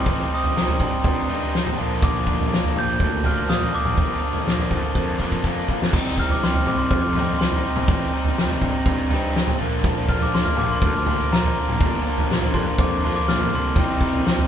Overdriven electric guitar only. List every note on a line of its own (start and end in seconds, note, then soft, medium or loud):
0.06 0.55 C3 medium
0.06 0.34 G3 medium
0.06 0.32 C4 medium
0.06 0.30 D#4 medium
0.31 0.56 G3 medium
0.31 0.57 C4 medium
0.31 0.58 D#4 medium
0.56 1.53 C3 medium
0.56 1.30 G3 medium
0.56 1.29 C4 medium
0.56 1.27 D#4 medium
1.29 1.54 G3 medium
1.29 1.54 C4 medium
1.29 1.55 D#4 medium
1.54 1.77 C3 medium
1.54 1.77 G3 medium
1.54 1.78 C4 medium
1.54 1.77 D#4 loud
1.77 2.01 A#2 medium
1.77 2.02 D3 medium
1.77 2.03 F3 medium
1.77 2.04 A#3 medium
1.77 2.04 D4 medium
2.02 3.47 A#2 medium
2.02 2.49 D3 medium
2.02 2.29 F3 medium
2.02 2.27 A#3 medium
2.02 2.25 D4 medium
2.26 2.51 F3 medium
2.26 2.52 A#3 medium
2.26 2.52 D4 medium
2.50 3.48 D3 medium
2.50 3.25 F3 medium
2.50 3.23 A#3 medium
2.50 3.23 D4 medium
3.24 3.48 F3 medium
3.24 3.48 A#3 medium
3.24 3.49 D4 medium
3.47 3.96 A#2 medium
3.47 3.96 D3 medium
3.47 3.74 F3 medium
3.47 3.73 A#3 medium
3.47 3.72 D4 medium
3.73 3.97 F3 soft
3.73 3.98 A#3 medium
3.73 3.98 D4 medium
3.97 4.47 A#2 medium
3.97 4.44 D3 medium
3.97 4.23 F3 medium
3.97 4.21 A#3 medium
3.97 4.21 D4 loud
4.22 4.46 F3 medium
4.22 4.46 A#3 medium
4.22 4.47 D4 medium
4.46 5.43 D3 medium
4.46 5.20 F3 medium
4.46 5.20 A#3 medium
4.46 5.17 D4 medium
5.19 5.44 F3 medium
5.19 5.44 A#3 medium
5.19 5.45 D4 medium
5.43 5.92 A#2 medium
5.43 5.92 D3 medium
5.43 5.71 F3 medium
5.43 5.70 A#3 medium
5.43 5.68 D4 medium
5.69 5.94 F3 medium
5.69 5.93 A#3 medium
5.69 5.92 D4 medium
5.94 6.42 C3 medium
5.94 6.21 G3 medium
5.94 6.20 C4 medium
5.94 6.19 D#4 medium
6.19 6.43 G3 medium
6.19 6.44 C4 medium
6.19 6.46 D#4 medium
6.42 7.37 C3 medium
6.42 7.18 G3 medium
6.42 7.17 C4 medium
6.42 7.16 D#4 medium
7.17 7.39 G3 medium
7.17 7.40 C4 medium
7.17 7.41 D#4 medium
7.39 7.87 C3 medium
7.39 7.65 G3 medium
7.39 7.64 C4 medium
7.39 7.62 D#4 loud
7.63 7.89 G3 medium
7.63 7.90 C4 medium
7.63 7.91 D#4 medium
7.89 8.37 C3 medium
7.89 8.14 G3 medium
7.89 8.13 C4 medium
7.89 8.12 D#4 medium
8.13 8.37 G3 medium
8.13 8.38 C4 medium
8.13 8.39 D#4 medium
8.38 9.33 C3 medium
8.38 9.12 G3 medium
8.38 9.12 C4 medium
8.38 9.09 D#4 medium
9.11 9.34 G3 medium
9.11 9.35 C4 medium
9.11 9.35 D#4 medium
9.34 9.58 C3 medium
9.34 9.59 G3 medium
9.34 9.58 C4 loud
9.34 9.57 D#4 medium
9.58 9.82 A#2 medium
9.58 9.83 D3 medium
9.58 9.84 F3 medium
9.58 9.85 A#3 medium
9.58 9.85 D4 medium
9.83 11.32 A#2 medium
9.83 10.31 D3 loud
9.83 10.09 F3 medium
9.83 10.08 A#3 medium
9.83 10.07 D4 medium
10.07 10.33 F3 medium
10.07 10.33 A#3 medium
10.07 10.35 D4 medium
10.32 11.31 D3 medium
10.32 11.08 F3 medium
10.32 11.07 A#3 medium
10.32 11.06 D4 medium
11.07 11.32 F3 medium
11.07 11.33 A#3 medium
11.07 11.34 D4 medium
11.32 11.79 A#2 medium
11.32 11.80 D3 loud
11.32 11.58 F3 loud
11.32 11.57 A#3 loud
11.32 11.55 D4 medium
11.56 11.81 F3 medium
11.56 11.82 A#3 medium
11.56 11.82 D4 medium
11.81 12.30 A#2 medium
11.81 12.30 D3 medium
11.81 12.08 F3 medium
11.81 12.06 A#3 medium
11.81 12.04 D4 loud
12.06 12.31 F3 medium
12.06 12.32 A#3 medium
12.06 12.32 D4 medium
12.31 13.28 D3 medium
12.31 13.06 F3 medium
12.31 13.05 A#3 medium
12.31 13.03 D4 medium
13.04 13.28 F3 medium
13.04 13.29 A#3 medium
13.04 13.29 D4 medium
13.28 13.76 A#2 medium
13.28 13.76 D3 medium
13.28 13.53 F3 medium
13.28 13.52 A#3 medium
13.28 13.51 D4 medium
13.52 13.77 F3 medium
13.52 13.76 A#3 medium
13.52 13.76 D4 medium
13.76 14.24 C3 medium
13.76 14.03 G3 medium
13.76 14.02 C4 medium
13.76 14.01 D#4 loud
14.01 14.24 G3 medium
14.01 14.26 C4 medium
14.01 14.26 D#4 medium
14.24 14.47 C3 medium
14.24 14.47 G3 medium
14.24 14.47 C4 medium
14.24 14.47 D#4 medium